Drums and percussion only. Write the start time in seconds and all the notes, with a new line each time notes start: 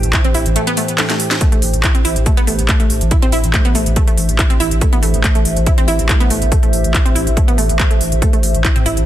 0.03 closed hi-hat
0.13 kick, clap, closed hi-hat
0.24 closed hi-hat
0.34 open hi-hat
0.46 closed hi-hat
0.56 closed hi-hat
0.67 closed hi-hat
0.77 open hi-hat
0.88 closed hi-hat
0.98 snare, clap, closed hi-hat
1.10 snare, closed hi-hat
1.20 open hi-hat
1.31 snare, closed hi-hat
1.41 kick, closed hi-hat
1.52 closed hi-hat
1.62 open hi-hat
1.74 closed hi-hat
1.84 kick, clap, closed hi-hat
1.95 closed hi-hat
2.05 open hi-hat
2.16 closed hi-hat
2.26 kick, closed hi-hat
2.37 closed hi-hat
2.47 open hi-hat
2.59 closed hi-hat
2.69 kick, clap, closed hi-hat
2.80 closed hi-hat
2.90 open hi-hat
3.01 closed hi-hat
3.11 kick, closed hi-hat
3.22 closed hi-hat
3.32 open hi-hat
3.44 closed hi-hat
3.54 kick, clap, closed hi-hat
3.65 closed hi-hat
3.75 open hi-hat
3.86 closed hi-hat
3.96 kick, closed hi-hat
4.07 closed hi-hat
4.17 open hi-hat
4.29 closed hi-hat
4.39 kick, clap, closed hi-hat
4.50 closed hi-hat
4.60 open hi-hat
4.71 closed hi-hat
4.81 kick, closed hi-hat
4.93 closed hi-hat
5.03 open hi-hat
5.14 closed hi-hat
5.24 kick, clap, closed hi-hat
5.35 closed hi-hat
5.45 open hi-hat
5.56 closed hi-hat
5.66 kick, closed hi-hat
5.78 closed hi-hat
5.88 open hi-hat
5.99 closed hi-hat
6.09 kick, clap, closed hi-hat
6.20 closed hi-hat
6.30 open hi-hat
6.42 closed hi-hat
6.52 kick, closed hi-hat
6.63 closed hi-hat
6.73 open hi-hat
6.84 closed hi-hat
6.94 kick, clap, closed hi-hat
7.06 closed hi-hat
7.16 open hi-hat
7.27 closed hi-hat
7.37 kick, closed hi-hat
7.48 closed hi-hat
7.58 open hi-hat
7.69 closed hi-hat
7.79 kick, clap, closed hi-hat
7.91 closed hi-hat
8.01 open hi-hat
8.12 closed hi-hat
8.22 kick, closed hi-hat
8.33 closed hi-hat
8.43 open hi-hat
8.54 closed hi-hat
8.65 kick, clap, closed hi-hat
8.76 closed hi-hat, mid tom
8.86 open hi-hat
8.97 closed hi-hat